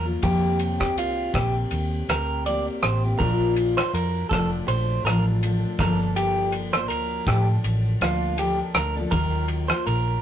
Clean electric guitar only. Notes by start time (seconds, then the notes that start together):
0.23 G4
0.80 G4
0.99 F4
1.34 G4
2.10 A#4
2.46 D5
2.83 C5
3.19 A#4
3.77 C5
3.94 A#4
4.29 A4
4.68 C5
5.05 A#4
5.80 A#4
6.16 G4
6.73 C5
6.88 A#4
7.27 G4
8.03 F4
8.39 G4
8.75 A#4
9.11 A#4
9.68 C5
9.87 A#4